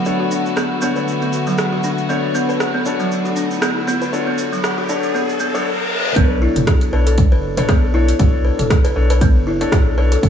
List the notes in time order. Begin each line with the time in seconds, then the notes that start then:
Already playing: D3 A3 B3 F#4, riser
0.05 D4 A4 C#5, shaker
0.20 F#4
0.31 D4, shaker
0.46 shaker
0.56 B3, cross-stick, shaker
0.82 B3 D4 A4 C#5, shaker
0.96 B4, shaker
1.08 shaker
1.22 B3, shaker
1.33 shaker
1.47 F#3, shaker
1.58 cross-stick, shaker
1.72 F#4
1.84 D4, shaker
1.98 shaker
2.09 B3 D4 A4 C#5, shaker
2.35 B3, shaker
2.49 B4, shaker
2.60 cross-stick, shaker
2.74 B3
2.85 D4 A4 C#5, shaker
3.00 F#3, shaker
3.12 shaker
3.25 F#4, shaker
3.36 D4, shaker
3.51 shaker
3.62 B3, cross-stick, shaker
3.87 B3, shaker
4.01 B4, shaker
4.13 D4 A4 C#5, shaker
4.27 B3
4.38 shaker
4.52 F#3, shaker
4.64 cross-stick, shaker
4.78 F#4
4.89 D4 A4 C#5, shaker
5.03 shaker
5.14 B3, reverse cymbal, shaker
5.29 shaker
5.40 B3, shaker
5.54 F#3 D4 A4 C#5, shaker
6.16 B1 B3 D4 A4 C#5, kick, closed hi-hat
6.42 E4
6.56 F#1, closed hi-hat, mid tom
6.67 F#4, kick, cross-stick, closed hi-hat
6.81 closed hi-hat
6.92 B1 D4 A4 B4 C#5
7.07 A4, closed hi-hat
7.18 kick, closed hi-hat
7.32 F#1 B4
7.57 D4 A4 B4 C#5, closed hi-hat, mid tom
7.69 B3, kick, cross-stick, closed hi-hat
7.83 B1
7.94 D4 E4 A4 C#5
8.08 closed hi-hat
8.19 B1 D4 F#4 A4 C#5, kick, closed hi-hat
8.45 B4
8.59 F#1 A4, closed hi-hat, mid tom
8.70 kick, cross-stick, closed hi-hat
8.84 B4, closed hi-hat
8.96 B1 D4 A4 C#5
9.10 B4, closed hi-hat
9.21 B3, kick, closed hi-hat
9.35 F#1
9.47 E4
9.61 D4 A4 C#5, closed hi-hat
9.72 F#4, kick, cross-stick, closed hi-hat, mid tom
9.86 B1
9.98 D4 A4 B4 C#5
10.12 A4, closed hi-hat
10.23 B1 D4 A4 C#5, kick, closed hi-hat